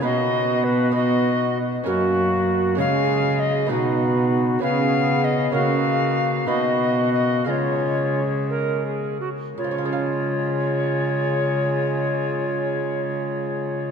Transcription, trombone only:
\new Staff \with { instrumentName = "Trombone" } { \time 6/8 \key des \mixolydian \tempo 4. = 62 ces'4. ces'4 r8 | bes4. aes4. | ces'4. ces'4. | bes4. ces'4. |
aes2~ aes8 r8 | aes2.~ | aes2. | }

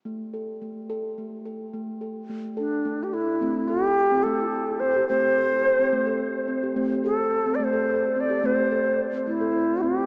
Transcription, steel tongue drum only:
<<
  \new Staff \with { instrumentName = "Steel tongue drum" } { \time 6/8 \key a \minor \tempo 4. = 72 r8 a'8 a8 a'8 a8 a'8 | r8 a'8 a8 a'8 a8 a'8 | c'8 a'8 r16 c'8 a'8 r16 c'16 g'16 | c'8 a'8 r16 c'8 a'8 r16 c'16 g'16 |
c'8 a'8 r16 c'8 a'8 r16 c'16 g'16 | c'8 a'8 r16 c'8 a'8 r16 c'16 g'16 | }
  \new Staff \with { instrumentName = "Steel tongue drum" } { \time 6/8 \key a \minor a2. | a2. | a4. a4. | a4. a4. |
a4. a4. | a4. a4. | }
>>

